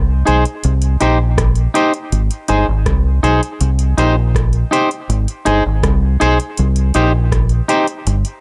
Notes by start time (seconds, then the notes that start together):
Already playing: C2
0.25 B1 D#4 G#4 C5, closed hi-hat
0.45 closed hi-hat
0.64 C2, closed hi-hat
0.82 closed hi-hat
1.01 A#1 D#4 G4 C5, closed hi-hat
1.38 kick, cross-stick, closed hi-hat
1.55 closed hi-hat
1.74 D#4 G4 C5, closed hi-hat
1.94 closed hi-hat
2.12 G#1, closed hi-hat
2.31 closed hi-hat
2.48 G1 D#4 G#4 C5, closed hi-hat
2.68 G#1
2.86 C2, kick, cross-stick, closed hi-hat
3.23 B1 D#4 G#4 C5, closed hi-hat
3.43 closed hi-hat
3.61 C2, closed hi-hat
3.79 closed hi-hat
3.98 A#1 D#4 G4 C5, closed hi-hat
4.35 kick, cross-stick, closed hi-hat
4.53 closed hi-hat
4.71 D#4 G4 C5, closed hi-hat
4.91 closed hi-hat
5.09 G#1, closed hi-hat
5.28 closed hi-hat
5.45 G1 D#4 G#4 C5, closed hi-hat
5.66 G#1
5.83 C2, kick, cross-stick, closed hi-hat
6.20 B1 D#4 G#4 C5, closed hi-hat
6.40 closed hi-hat
6.57 C2, closed hi-hat
6.76 closed hi-hat
6.94 A#1 D#4 G4 C5, closed hi-hat
7.32 kick, cross-stick, closed hi-hat
7.49 closed hi-hat
7.68 D#4 G4 C5, closed hi-hat
7.87 closed hi-hat
8.07 G1, closed hi-hat
8.25 closed hi-hat